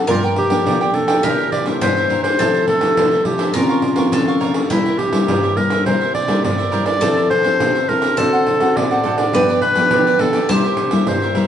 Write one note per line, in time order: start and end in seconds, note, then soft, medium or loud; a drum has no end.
0.07 0.63 G2 medium
0.07 0.47 F3 medium
0.07 0.47 A#3 medium
0.07 0.47 D4 medium
0.07 0.22 F4 soft
0.07 0.22 F4 medium
0.07 1.27 A#4 loud
0.07 0.22 A#4 soft
0.07 0.23 D5 medium
0.07 0.23 G5 medium
0.07 pandeiro medium
0.24 0.36 A#4 medium
0.24 0.36 D5 medium
0.24 0.37 G5 medium
0.24 pandeiro soft
0.36 0.96 G4 medium
0.36 muted cavaquinho stroke soft
0.36 pandeiro medium
0.50 0.90 F3 medium
0.50 0.90 A#3 medium
0.50 0.90 D4 medium
0.50 0.65 A#4 medium
0.50 0.65 D5 medium
0.50 0.64 G5 medium
0.50 pandeiro medium
0.66 1.21 D3 medium
0.66 0.79 F4 medium
0.66 0.80 A#4 medium
0.66 0.80 D5 medium
0.66 0.80 G5 medium
0.66 pandeiro medium
0.81 1.09 A#4 soft
0.81 1.07 D5 medium
0.81 1.06 G5 medium
0.81 pandeiro soft
0.94 1.19 F3 medium
0.94 1.19 A#3 medium
0.94 1.20 D4 medium
0.94 1.25 A4 medium
0.94 pandeiro medium
1.08 1.23 A#4 medium
1.08 1.22 D5 medium
1.08 1.22 G5 medium
1.08 pandeiro medium
1.23 1.79 C3 medium
1.23 1.63 E3 medium
1.23 1.63 A#3 medium
1.23 1.63 D4 medium
1.23 1.37 E4 soft
1.23 1.80 G4 loud
1.23 1.51 A#4 medium
1.23 1.38 A#4 soft
1.23 1.38 C5 medium
1.23 1.38 E5 medium
1.23 pandeiro medium
1.39 1.52 A#4 soft
1.39 1.53 C5 medium
1.39 1.52 E5 medium
1.39 pandeiro soft
1.52 1.65 D5 medium
1.52 muted cavaquinho stroke soft
1.52 pandeiro medium
1.66 2.06 E3 medium
1.66 2.06 A#3 medium
1.66 2.06 D4 medium
1.66 1.95 A#4 medium
1.66 1.95 C5 medium
1.66 1.94 E5 medium
1.66 pandeiro medium
1.81 2.37 G2 medium
1.81 2.39 G4 loud
1.81 2.22 C5 loud
1.81 pandeiro medium
1.97 2.09 A#4 medium
1.97 2.10 C5 medium
1.97 2.10 E5 medium
1.97 pandeiro soft
2.10 2.35 E3 medium
2.10 2.35 A#3 medium
2.10 2.35 D4 medium
2.10 2.23 E4 medium
2.10 2.24 A#4 medium
2.10 2.24 C5 medium
2.10 2.23 E5 medium
2.10 pandeiro medium
2.23 2.39 A#4 soft
2.23 2.64 C5 loud
2.23 2.38 C5 soft
2.23 2.38 E5 soft
2.23 pandeiro medium
2.38 2.95 C3 medium
2.38 2.79 F3 medium
2.38 2.79 A3 medium
2.38 2.79 E4 medium
2.38 2.52 F4 soft
2.38 3.58 A4 medium
2.38 2.53 A4 medium
2.38 2.53 C5 medium
2.38 2.53 E5 medium
2.38 pandeiro medium
2.54 2.67 A4 medium
2.54 2.67 C5 medium
2.54 2.67 E5 medium
2.54 pandeiro soft
2.68 3.27 A4 loud
2.68 muted cavaquinho stroke soft
2.68 pandeiro medium
2.81 3.21 F3 medium
2.81 3.21 A3 medium
2.81 3.21 E4 medium
2.81 2.96 A4 medium
2.81 2.96 C5 medium
2.81 2.95 E5 medium
2.81 pandeiro medium
2.97 3.52 C3 medium
2.97 3.10 F4 soft
2.97 3.11 A4 medium
2.97 3.11 C5 medium
2.97 3.11 E5 medium
2.97 pandeiro medium
3.11 3.39 A4 medium
3.11 3.38 C5 medium
3.11 3.37 E5 medium
3.11 pandeiro soft
3.25 3.50 F3 medium
3.25 3.50 A3 medium
3.25 3.50 E4 medium
3.25 3.54 G4 medium
3.25 pandeiro medium
3.38 3.54 A4 medium
3.38 3.53 C5 medium
3.38 3.53 E5 medium
3.38 pandeiro medium
3.54 4.10 C#3 medium
3.54 3.94 F3 medium
3.54 3.94 A#3 medium
3.54 3.94 C4 medium
3.54 3.68 F4 medium
3.54 4.40 F4 medium
3.54 4.14 A#4 loud
3.54 3.68 A#4 soft
3.54 3.69 C#5 medium
3.54 3.68 F5 medium
3.54 pandeiro medium
3.69 3.82 A#4 medium
3.69 3.82 C#5 medium
3.69 3.83 F5 medium
3.69 pandeiro soft
3.82 muted cavaquinho stroke soft
3.82 pandeiro medium
3.96 4.36 F3 medium
3.96 4.36 A#3 medium
3.96 4.37 C4 medium
3.96 4.26 A#4 medium
3.96 4.26 C#5 medium
3.96 4.25 F5 medium
3.96 pandeiro medium
4.12 4.68 C#3 medium
4.12 4.70 A4 loud
4.12 pandeiro medium
4.28 4.39 A#4 soft
4.28 4.40 C#5 medium
4.28 4.40 F5 medium
4.28 pandeiro soft
4.40 4.58 F3 medium
4.40 4.59 C4 medium
4.40 4.54 F4 medium
4.40 4.55 A#4 medium
4.40 4.54 C#5 medium
4.40 4.53 F5 medium
4.40 pandeiro medium
4.54 4.70 A#4 soft
4.54 4.69 C#5 soft
4.54 4.69 F5 soft
4.54 pandeiro medium
4.69 5.25 C3 medium
4.69 5.09 G3 medium
4.69 5.09 A#3 medium
4.69 4.84 E4 medium
4.69 5.10 E4 medium
4.69 5.00 E4 medium
4.69 6.69 G4 medium
4.69 4.84 A#4 medium
4.69 4.84 C5 medium
4.69 4.85 E5 medium
4.69 pandeiro medium
4.86 4.98 A#4 medium
4.86 4.99 C5 medium
4.86 4.99 E5 medium
4.86 pandeiro soft
4.98 5.58 G4 loud
4.98 muted cavaquinho stroke soft
4.98 pandeiro medium
5.11 5.52 G3 medium
5.11 5.52 A#3 medium
5.11 5.52 E4 medium
5.11 5.28 A#4 medium
5.11 5.27 C5 medium
5.11 5.27 E5 medium
5.11 pandeiro medium
5.28 5.83 G2 medium
5.28 5.42 E4 soft
5.28 5.42 A#4 medium
5.28 5.42 C5 medium
5.28 5.42 E5 medium
5.28 pandeiro medium
5.43 5.71 A#4 medium
5.43 5.70 C5 medium
5.43 5.69 E5 medium
5.43 pandeiro soft
5.56 5.74 G3 medium
5.56 5.74 A#3 medium
5.56 5.75 E4 medium
5.56 5.85 A#4 medium
5.56 pandeiro medium
5.70 5.85 A#4 medium
5.70 5.85 C5 medium
5.70 5.85 E5 medium
5.70 pandeiro medium
5.85 6.42 C3 medium
5.85 6.14 G3 medium
5.85 6.14 A#3 medium
5.85 5.99 E4 soft
5.85 6.14 E4 medium
5.85 6.00 A#4 medium
5.85 6.13 C5 medium
5.85 6.00 C5 medium
5.85 6.00 E5 soft
5.85 pandeiro medium
6.01 6.13 A#4 medium
6.01 6.14 C5 medium
6.01 6.14 E5 medium
6.01 pandeiro soft
6.14 6.42 D5 loud
6.14 muted cavaquinho stroke soft
6.14 pandeiro medium
6.28 6.68 G3 medium
6.28 6.68 A#3 medium
6.28 6.68 E4 medium
6.28 6.58 A#4 medium
6.28 6.57 C5 medium
6.28 6.56 E5 medium
6.28 pandeiro medium
6.44 6.99 G2 medium
6.44 6.85 D5 medium
6.44 pandeiro medium
6.58 6.71 A#4 medium
6.58 6.72 C5 medium
6.58 6.72 E5 medium
6.58 pandeiro soft
6.71 6.98 G3 soft
6.71 6.98 A#3 medium
6.71 6.85 E4 medium
6.71 6.98 E4 medium
6.71 6.86 A#4 medium
6.71 6.85 C5 medium
6.71 6.84 E5 medium
6.71 pandeiro medium
6.85 7.01 A#4 soft
6.85 7.00 C5 soft
6.85 7.27 D5 loud
6.85 7.00 E5 soft
6.85 pandeiro medium
7.01 7.58 F3 medium
7.01 7.30 C4 medium
7.01 7.30 E4 medium
7.01 7.15 F4 medium
7.01 8.21 A4 loud
7.01 7.15 A4 medium
7.01 7.30 A4 medium
7.01 7.15 C5 medium
7.01 7.15 E5 medium
7.01 pandeiro medium
7.17 7.29 A4 medium
7.17 7.29 C5 medium
7.17 7.29 E5 medium
7.17 pandeiro soft
7.29 7.90 C5 loud
7.29 muted cavaquinho stroke soft
7.29 pandeiro medium
7.43 7.84 C4 medium
7.43 7.84 E4 medium
7.43 7.58 A4 medium
7.43 7.84 A4 medium
7.43 7.58 C5 medium
7.43 7.57 E5 medium
7.43 pandeiro medium
7.59 8.15 C3 medium
7.59 7.73 F4 soft
7.59 7.73 A4 soft
7.59 7.74 C5 medium
7.59 7.74 E5 medium
7.59 pandeiro medium
7.75 8.02 A4 medium
7.75 8.01 C5 medium
7.75 8.00 E5 medium
7.75 pandeiro soft
7.88 8.06 C4 medium
7.88 8.06 E4 medium
7.88 8.07 A4 medium
7.88 8.20 A#4 medium
7.88 pandeiro medium
8.01 8.17 A4 medium
8.01 8.16 C5 medium
8.01 8.16 E5 medium
8.01 pandeiro medium
8.17 8.74 D3 medium
8.17 8.46 C4 medium
8.17 8.31 D4 soft
8.17 8.46 F#4 medium
8.17 8.78 A4 medium
8.17 8.31 A4 medium
8.17 8.46 A4 medium
8.17 9.34 C5 loud
8.17 8.32 C5 medium
8.17 8.31 F#5 soft
8.17 pandeiro medium
8.32 8.46 A4 medium
8.32 8.46 C5 medium
8.32 8.46 F#5 medium
8.32 pandeiro soft
8.46 muted cavaquinho stroke soft
8.46 pandeiro medium
8.60 9.00 C4 medium
8.60 9.00 F#4 medium
8.60 9.00 A4 medium
8.60 8.90 A4 medium
8.60 8.89 C5 medium
8.60 8.89 F#5 medium
8.60 pandeiro medium
8.76 9.31 A2 medium
8.76 9.17 D5 medium
8.76 pandeiro medium
8.91 9.03 A4 medium
8.91 9.04 C5 medium
8.91 9.04 F#5 medium
8.91 pandeiro soft
9.04 9.29 C4 medium
9.04 9.18 D4 medium
9.04 9.29 F#4 medium
9.04 9.18 A4 medium
9.04 9.29 A4 medium
9.04 9.18 C5 medium
9.04 9.17 F#5 medium
9.04 pandeiro medium
9.17 9.33 A4 soft
9.17 9.33 C5 soft
9.17 9.59 D5 loud
9.17 9.32 F#5 soft
9.17 pandeiro medium
9.33 9.89 G2 medium
9.33 9.61 F3 medium
9.33 9.61 B3 medium
9.33 9.61 D4 medium
9.33 9.47 F4 medium
9.33 9.48 G4 medium
9.33 10.49 B4 loud
9.33 9.48 B4 medium
9.33 9.48 D5 soft
9.33 pandeiro medium
9.48 9.62 G4 medium
9.48 9.62 B4 medium
9.48 9.62 D5 medium
9.48 pandeiro soft
9.62 10.22 B4 loud
9.62 muted cavaquinho stroke soft
9.62 pandeiro medium
9.75 10.15 F3 medium
9.75 10.15 B3 medium
9.75 10.16 D4 medium
9.75 9.91 G4 medium
9.75 9.90 B4 medium
9.75 9.90 D5 medium
9.75 pandeiro medium
9.91 10.47 D3 medium
9.91 10.05 F4 medium
9.91 10.05 G4 medium
9.91 10.06 B4 medium
9.91 10.05 D5 medium
9.91 pandeiro medium
10.07 10.35 G4 medium
10.07 10.34 B4 medium
10.07 10.33 D5 medium
10.07 pandeiro soft
10.19 10.37 F3 medium
10.19 10.38 B3 medium
10.19 10.38 D4 medium
10.19 10.49 A4 medium
10.19 pandeiro medium
10.33 10.49 G4 medium
10.33 10.49 B4 medium
10.33 10.48 D5 medium
10.33 pandeiro medium
10.49 11.04 C3 medium
10.49 10.76 G3 medium
10.49 10.77 A#3 medium
10.49 10.63 E4 soft
10.49 10.77 E4 medium
10.49 11.10 G4 medium
10.49 10.63 A#4 medium
10.49 11.47 C5 loud
10.49 10.63 C5 medium
10.49 10.63 E5 medium
10.49 pandeiro medium
10.64 10.77 A#4 medium
10.64 10.78 C5 medium
10.64 10.77 E5 medium
10.64 pandeiro soft
10.77 muted cavaquinho stroke soft
10.77 pandeiro medium
10.91 11.31 G3 medium
10.91 11.32 A#3 medium
10.91 11.32 E4 medium
10.91 11.21 A#4 medium
10.91 11.20 C5 medium
10.91 11.20 E5 medium
10.91 pandeiro medium
11.07 11.47 G2 medium
11.07 11.47 C5 medium
11.07 pandeiro medium
11.22 11.35 A#4 medium
11.22 11.35 C5 medium
11.22 11.35 E5 medium
11.22 pandeiro soft
11.35 11.47 G3 medium
11.35 11.47 A#3 medium
11.35 11.47 E4 medium
11.35 11.47 A#4 medium
11.35 11.47 C5 medium
11.35 11.47 E5 medium
11.35 pandeiro medium